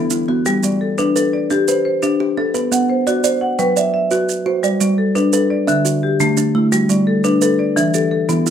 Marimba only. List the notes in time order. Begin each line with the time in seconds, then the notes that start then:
Already playing: B3 A4
0.28 F#4
0.46 G3
0.63 D5
0.81 A4
0.98 D4
1.16 A4
1.33 D5
1.50 G4
1.68 C5
1.85 C5
2.02 D4
2.37 A4
2.55 B3
2.72 F#5
2.89 C5
3.07 F#4
3.24 C5
3.41 F#5
3.59 B4
3.76 E5
3.94 E5
4.11 F#4
4.46 C5
4.63 G3
4.80 D5
4.98 A4
5.15 D4
5.33 A4
5.50 D5
5.68 D3
6.03 G4
6.20 A3
6.55 E4
6.72 G3
6.89 D5
7.07 A4
7.24 D4
7.42 A4
7.59 D5
7.76 E3
7.94 A4
8.11 A4
8.29 B3